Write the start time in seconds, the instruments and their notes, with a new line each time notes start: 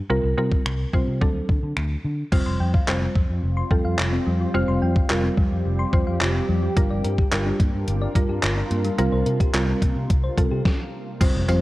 0.10 fingered electric bass C2, synth pluck G3 C4 F4 A#4
0.24 fingered electric bass C2
0.38 fingered electric bass C3, synth pluck G3 C4 F4 A#4
0.52 kick
0.66 fingered electric bass C2, finger snap
0.93 fingered electric bass C3, synth pluck G3 C4 F4 C5, kick
1.07 fingered electric bass C3
1.21 fingered electric bass D2, synth pluck F#3 C4 D4 A4, kick
1.49 fingered electric bass D3, kick
1.63 fingered electric bass D3
1.77 fingered electric bass D2, finger snap
2.04 fingered electric bass D3
2.32 fingered electric bass F1, synth pluck G3 C4 F4 C5, ambient pad G3 C4 F4, synth arpeggio sound F6, kick, crash
2.46 fingered electric bass F1, synth arpeggio sound C6
2.60 fingered electric bass F2, synth arpeggio sound G5
2.74 synth arpeggio sound F5, kick
2.87 fingered electric bass F1, synth pluck G3 C4 F4 C5, synth arpeggio sound F4, clap
3.01 synth arpeggio sound C4
3.15 fingered electric bass F2, synth arpeggio sound G3, kick
3.29 fingered electric bass F2
3.43 fingered electric bass F1
3.57 synth arpeggio sound C6
3.71 fingered electric bass F2, synth pluck G3 C4 F4 A4, synth arpeggio sound G5, kick
3.85 fingered electric bass F2, synth arpeggio sound F5
3.99 fingered electric bass F1, synth arpeggio sound F4, clap
4.13 synth arpeggio sound C4
4.26 fingered electric bass F2, synth arpeggio sound G3
4.40 synth arpeggio sound F3
4.54 fingered electric bass F1, synth pluck G3 C4 F4 C5, ambient pad G4, synth arpeggio sound F6
4.68 fingered electric bass F1, synth arpeggio sound C6
4.82 fingered electric bass F2, synth arpeggio sound G5
4.96 synth arpeggio sound F5, kick
5.10 fingered electric bass F1, synth pluck G3 C4 F4 A#4, synth arpeggio sound F4, clap
5.24 synth arpeggio sound C4
5.38 fingered electric bass F2, synth arpeggio sound G3, kick
5.52 fingered electric bass F2
5.66 fingered electric bass F1
5.79 synth arpeggio sound C6
5.93 fingered electric bass F2, synth pluck G3 C4 F4 C5, synth arpeggio sound G5, kick
6.07 fingered electric bass F2, synth arpeggio sound F5
6.21 fingered electric bass F1, synth arpeggio sound F4, clap
6.35 synth arpeggio sound C4
6.49 fingered electric bass F2, synth arpeggio sound G3
6.63 synth arpeggio sound F3
6.76 fingered electric bass G1, synth pluck G3 D4 F4 A#4, ambient pad D4 F4 A#4, synth arpeggio sound F5, kick, closed hi-hat
6.90 fingered electric bass G1, synth arpeggio sound D5
7.04 fingered electric bass G2, synth arpeggio sound A#4, closed hi-hat
7.18 synth arpeggio sound G4, kick
7.32 fingered electric bass G1, synth pluck G3 D4 F4 A#4, synth arpeggio sound F4, clap, closed hi-hat
7.46 synth arpeggio sound D4
7.60 fingered electric bass G2, synth arpeggio sound A#3, kick, closed hi-hat
7.74 fingered electric bass G2
7.88 fingered electric bass G1, closed hi-hat
8.02 synth arpeggio sound D5
8.15 fingered electric bass G2, synth pluck G3 D4 F4 A#4, synth arpeggio sound A#4, kick, closed hi-hat
8.29 fingered electric bass G2, synth arpeggio sound G4
8.43 fingered electric bass G1, synth arpeggio sound F4, clap, closed hi-hat
8.57 synth arpeggio sound D4
8.71 fingered electric bass G2, synth arpeggio sound A#3, closed hi-hat
8.85 synth arpeggio sound G3, closed hi-hat
8.98 fingered electric bass C2, ambient pad C3 A#3, synth pluck G3 C4 F4 A#4, synth arpeggio sound F5, closed hi-hat
9.13 fingered electric bass C2, synth arpeggio sound C5
9.26 fingered electric bass C3, synth arpeggio sound A#4, closed hi-hat
9.40 synth arpeggio sound G4, kick, closed hi-hat
9.54 fingered electric bass C2, synth pluck G3 C4 F4 A#4, synth arpeggio sound F4, clap, closed hi-hat
9.68 synth arpeggio sound C4
9.82 fingered electric bass C3, synth arpeggio sound A#3, kick, closed hi-hat
9.96 fingered electric bass C3
10.10 fingered electric bass C2, kick, closed hi-hat
10.24 synth arpeggio sound C5
10.37 fingered electric bass C3, synth pluck G3 C4 F4 A4, synth arpeggio sound A#4, kick, closed hi-hat
10.51 fingered electric bass C3, synth arpeggio sound G4
10.65 kick, snare
11.21 fingered electric bass F1, synth pluck G3 C4 F4 C5, kick, closed hi-hat, crash, tambourine, impact
11.35 fingered electric bass F1
11.48 fingered electric bass F2, synth pluck G3 C4 F4 C5, closed hi-hat, tambourine